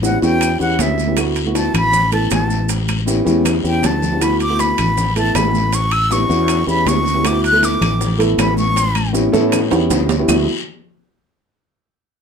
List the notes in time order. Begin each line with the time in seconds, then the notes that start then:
Already playing: A1
0.02 B3 C#4 E4 G4 F#5, high bongo, high conga, low timbale, short guiro, maracas
0.21 E2 B3 C#4 E4 F#4 G5, high bongo, high conga, short guiro, maracas
0.41 high bongo, high conga, high timbale, long guiro, claves, maracas
0.59 E2 B3 C#4 E4 G4 F#5, maracas
0.79 D2 E5, high bongo, low bongo, high conga, high timbale, low timbale, short guiro, maracas
0.98 high bongo, high conga, short guiro, maracas
1.07 B3 C#4 E4 G4
1.16 A3 B3 E4 F#4, high bongo, high conga, high timbale, long guiro, claves, maracas
1.36 high timbale, maracas
1.46 A3 B3 E4 F#4
1.55 A5, high bongo, high conga, high timbale, low timbale, short guiro, maracas
1.74 A1 B5, high bongo, low conga, high timbale, short guiro, claves, maracas
1.93 high bongo, high conga, low conga, long guiro, maracas
2.11 A3 B3 E4 A4 A5, high bongo, high timbale, maracas
2.31 A1 A5, high bongo, low bongo, high conga, high timbale, low timbale, short guiro, claves, maracas
2.50 high bongo, high conga, short guiro, maracas
2.69 high bongo, high conga, high timbale, long guiro, maracas
2.88 high bongo, high conga, high timbale, claves, maracas
3.06 B3 C#4 E4 G4, high bongo, low timbale, short guiro, maracas
3.25 E2 B3 C#4 E4 G4, high bongo, high conga, short guiro, maracas
3.45 high bongo, low conga, high timbale, long guiro, claves, maracas
3.64 E2 B3 C#4 E4 G4 G5, maracas
3.83 D2 A5, high bongo, low bongo, low conga, high timbale, low timbale, short guiro, maracas
4.02 high bongo, low conga, short guiro, maracas
4.11 B3 C#4 E4 G4
4.20 A3 B3 E4 F#4 B5, high bongo, high conga, high timbale, long guiro, claves, maracas
4.40 D6, high conga, high timbale, maracas
4.49 A3 B3 E4 F#4
4.59 B5, high bongo, high conga, high timbale, low timbale, short guiro, maracas
4.78 A1, high bongo, low conga, high timbale, short guiro, claves, maracas
4.97 high bongo, high conga, low conga, long guiro, maracas
5.16 A3 B3 E4 A4 A5, high bongo, high timbale, maracas
5.35 A1 B5, high bongo, low bongo, high conga, high timbale, low timbale, short guiro, claves, maracas
5.54 high bongo, high conga, short guiro, maracas
5.73 C#6, high bongo, high conga, high timbale, long guiro, maracas
5.91 E6, high bongo, high conga, high timbale, claves, maracas
6.10 B3 C#4 E4 G4 C#6, high bongo, high conga, low timbale, short guiro, maracas
6.29 E2 B3 C#4 E4 F#4, high bongo, high conga, short guiro, maracas
6.48 high bongo, high timbale, long guiro, claves, maracas
6.67 E2 B3 C#4 E4 G4 B5, maracas
6.86 D2 C#6, high bongo, low bongo, high conga, high timbale, low timbale, short guiro, maracas
7.05 high bongo, high conga, short guiro, maracas
7.14 B3 C#4 E4 G4
7.23 A3 B3 E4 F#4 D6, high bongo, high conga, high timbale, long guiro, claves, maracas
7.44 F#6, high timbale, maracas
7.52 A3 B3 E4 A4
7.62 D6, high bongo, high conga, high timbale, low timbale, short guiro, maracas
7.81 A1, high bongo, low conga, high timbale, short guiro, claves, maracas
8.00 high bongo, high conga, low conga, long guiro, maracas
8.18 A3 B3 E4 A4, high bongo, high conga, high timbale, maracas
8.38 A1 B5, high bongo, low bongo, high conga, high timbale, low timbale, short guiro, claves, maracas
8.57 C#6, high bongo, high conga, short guiro, maracas
8.76 high bongo, high conga, high timbale, long guiro, maracas
8.95 high bongo, high conga, high timbale, claves, maracas
9.13 B3 C#4 E4 G4, high bongo, high conga, low timbale, short guiro, maracas
9.32 A2 B3 C#4 E4 A4, high bongo, low conga, short guiro, maracas
9.52 high bongo, low conga, high timbale, long guiro, claves, maracas
9.70 E2 B3 C#4 E4 G4, low conga, high timbale, maracas
9.90 D2, high bongo, low bongo, low conga, high timbale, short guiro, maracas
10.09 high bongo, low conga, low timbale, short guiro, maracas
10.19 B3 C#4 E4 G4
10.28 D2 A3 B3 E4 F#4, low bongo, low conga, low timbale, long guiro, claves, maracas